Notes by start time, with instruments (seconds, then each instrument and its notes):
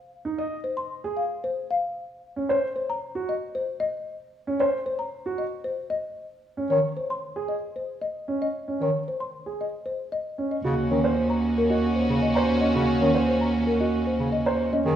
0.25 grand piano D#4
0.38 grand piano D#5, marimba D#5
0.64 marimba C5
0.77 marimba C6
1.04 grand piano G#4
1.17 marimba F5
1.44 marimba C5
1.71 marimba F5
2.36 grand piano C#4
2.49 grand piano C5, marimba C#5
2.76 marimba C5
2.89 marimba A#5
3.15 grand piano F#4
3.29 marimba D#5
3.55 marimba C5
3.80 marimba D#5
4.47 grand piano C#4
4.60 grand piano C5, marimba C#5
4.86 marimba C5
4.99 marimba A#5
5.26 grand piano F#4
5.38 marimba D#5
5.64 marimba C5
5.90 marimba D#5
6.57 grand piano C#4
6.70 bass clarinet D#3, grand piano C#5, marimba C#5
6.97 marimba C5
7.11 marimba C6
7.36 grand piano G#4
7.49 marimba D#5
7.76 marimba C5
8.01 marimba D#5
8.28 grand piano C#4
8.42 marimba D#5
8.68 grand piano C#4
8.80 bass clarinet D#3, grand piano C#5, marimba C#5
9.08 marimba C5
9.20 marimba C6
9.46 grand piano G#4
9.61 marimba D#5
9.86 marimba C5
10.12 marimba D#5
10.38 grand piano C#4
10.51 marimba D#5
10.64 cello D#2, bass clarinet C#3, violin section C#4 F#4, grand piano F#4
10.91 bass clarinet D#3, grand piano C#4, marimba C#5
11.04 grand piano C5
11.17 marimba C5
11.30 marimba A#5
11.58 marimba A#4
11.70 grand piano F#4, marimba D#5
11.96 marimba C5
12.10 bass clarinet C#3
12.22 marimba D#5
12.35 grand piano C5, marimba A#5
12.61 grand piano C#4, marimba D#5
12.75 bass clarinet C#3, grand piano F#4
13.01 bass clarinet D#3, grand piano C#4, marimba C#5
13.15 grand piano C5
13.28 marimba C5
13.41 marimba A#5
13.67 marimba A#4
13.80 grand piano F#4, marimba D#5
14.07 marimba C5
14.19 bass clarinet C#3
14.32 marimba D#5
14.46 grand piano C5, marimba A#5
14.73 grand piano C#4, marimba D#5
14.85 cello F2, bass clarinet D#3, violin section D#4 G#4, grand piano G#4